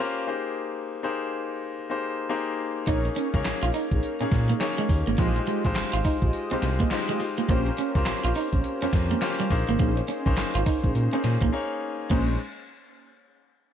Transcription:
Already playing: A#4
0.00 A#3 C#4 F4 G4 C5
0.27 A#3 D#4 G4 G#4 C5
1.03 A#3 D#4 G4 G#4 C5
1.90 A#3 D#4 G4 G#4 C5
2.29 A#3 D#4 G4 G#4 C5
2.87 A#1 A#3 C#4 D#4 G#4 A#4 C#5, kick, closed hi-hat, tambourine
3.05 muted clean electric guitar stroke, closed hi-hat
3.16 C#4 D#4 G#4 A#4 C#5, closed hi-hat, tambourine
3.34 C#2 A#3 C#4 D#4 G#4 C#5, kick, closed hi-hat
3.45 A#1, muted clean electric guitar stroke, snare, clap, closed hi-hat, tambourine
3.63 A#1 F4, closed hi-hat
3.74 D#4, open hi-hat, tambourine
3.91 A#1 D#4 G#4 A#4 C#5, kick, closed hi-hat
4.02 D#4 G#4 A#4 C#5, closed hi-hat, tambourine
4.20 A#2 A#3 C#4 D#4 G#4 C#5, closed hi-hat
4.32 A#2, muted clean electric guitar stroke, kick, snare, closed hi-hat, tambourine
4.49 A#3 D#4 G#4 A#4 C#5, closed hi-hat
4.60 A#3 C#4 D#4 G#4 C#5, snare, clap, closed hi-hat, tambourine
4.78 G#3, closed hi-hat
4.89 D#2, muted clean electric guitar stroke, kick, open hi-hat
5.07 G#1 A#3, closed hi-hat
5.18 A#1 F3 G#3 D#4 F4 G4 G#4 C5 D#5, kick, closed hi-hat, tambourine
5.36 muted clean electric guitar stroke, closed hi-hat
5.47 G#3 F4 G4 G#4 D#5, closed hi-hat, tambourine
5.65 A#1 G#3 D#4 F4 G4 C5, kick, closed hi-hat
5.75 G#1, muted clean electric guitar stroke, snare, clap, closed hi-hat, tambourine
5.93 G#1 F4, closed hi-hat
6.04 D#4, kick, open hi-hat, tambourine
6.22 A#1 F4 G4 G#4 D#5, kick, closed hi-hat
6.33 F4 G4 G#4 D#5, closed hi-hat, tambourine
6.51 C2 G#3 C4 D#4 F4 G4 C5, closed hi-hat
6.62 C2, muted clean electric guitar stroke, snare, closed hi-hat, tambourine
6.80 A#3 F4 G4 G#4 D#5, kick, closed hi-hat
6.91 G#3 D#4 F4 G4 C5, snare, clap, closed hi-hat, tambourine
7.08 G#3 F4 G4 G#4 D#5, closed hi-hat
7.20 muted clean electric guitar stroke, open hi-hat
7.38 A#3 F4 G4 G#4 D#5, closed hi-hat
7.48 A#1 A#3 C#4 F4 G4 A#4 C5, kick, closed hi-hat, tambourine
7.66 muted clean electric guitar stroke, closed hi-hat
7.77 C#4 G4 A#4 C5, closed hi-hat, tambourine
7.95 C#2 A#3 C4 F4 G4 C5, kick, closed hi-hat
8.02 C#4, snare, clap, closed hi-hat, tambourine
8.07 A#1, muted clean electric guitar stroke
8.24 A#1 F4, closed hi-hat
8.35 D#4, open hi-hat, tambourine
8.53 A#1 C#4 G4 A#4 C5, kick, closed hi-hat
8.64 C#4 G4 A#4 C5, closed hi-hat, tambourine
8.82 F2 A#3 C#4 F4 G4 C5, closed hi-hat
8.93 F2, muted clean electric guitar stroke, kick, snare, closed hi-hat, tambourine
9.10 A#3 C#4 G4 A#4 C5, closed hi-hat
9.22 A#3 C#4 F4 G4 C5, snare, clap, closed hi-hat, tambourine
9.39 G3, closed hi-hat
9.50 A#1 A#3 C#4 D#4 G#4 C5, muted clean electric guitar stroke, kick, open hi-hat
9.68 G#1 A#3, closed hi-hat
9.79 A#1 A#3 C#4 D#4 G#4 C5, kick, closed hi-hat, tambourine
9.97 muted clean electric guitar stroke, closed hi-hat
10.08 C#4 D#4 G#4 C5, closed hi-hat, tambourine
10.26 A#1 A#3 C#4 D#4 G#4 C5, kick, closed hi-hat
10.37 G#1, muted clean electric guitar stroke, snare, clap, closed hi-hat, tambourine
10.55 G#1 F4, closed hi-hat
10.66 D#4, kick, open hi-hat, tambourine
10.83 A#1 C#4 D#4 G#4 C5, kick, closed hi-hat
10.95 A#2 C#4 D#4 G#4 C5, closed hi-hat, tambourine
11.13 A#3 C#4 D#4 G#4 C5, closed hi-hat
11.24 A#2, muted clean electric guitar stroke, snare, closed hi-hat, tambourine
11.41 A#1 A#3 C#4 D#4 G#4 C5, kick, closed hi-hat
11.53 A#3 C#4 D#4 G#4 C#5
12.10 A#1 G#3 A#3 C#4 D#4 G#4 C5, kick, crash

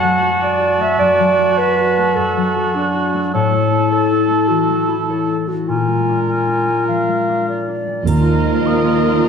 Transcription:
Already playing: F#2 A3 F#4 D5 F#5 A5
0.03 F#3
0.22 F#4
0.41 D5
0.61 F#4
0.80 A3 E5
0.99 F#2 D5
1.20 F#3
1.39 F#4
1.58 B4 D5
1.79 F#4
1.98 A3
2.16 F#2 A4
2.37 F#3
2.56 F#4
2.75 D4 D5
2.94 F#4
3.14 A3
3.33 A2 A4 C#5 A5
3.54 A3
3.72 E4
3.92 A4 C#5
4.11 E4
4.30 A3
4.49 E3 F#4
4.69 A3
4.88 E4
5.09 A4 C#5
5.29 E4
5.48 A3 F#4
5.68 A#2 F4 A#4 G#5
5.88 G#3
6.09 D4
6.29 A#4 G#5
6.48 D4
6.68 G#3
6.88 F3 F5
7.09 G#3
7.29 D4
7.48 A#4 D5
7.69 D4
7.88 G#3
8.06 D#2 A#2 D#3 F3 A#3 D#4 F4 A#4 D#5 A#5, triangle
8.27 A#3
8.46 A#4
8.65 D#4 F4 D#6
8.86 F4 F5
9.05 F4 A#4
9.25 D#4 D#5

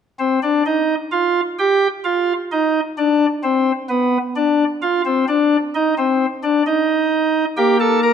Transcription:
0.19 C4
0.43 D4
0.66 D#4
1.12 F4
1.59 G4
2.04 F4
2.52 D#4
2.98 D4
3.43 C4
3.89 B3
4.36 D4
4.82 F4
5.06 C4
5.28 D4
5.75 D#4
5.98 C4
6.43 D4
6.67 D#4
7.57 A#3 G4
7.80 A4
8.03 A#4

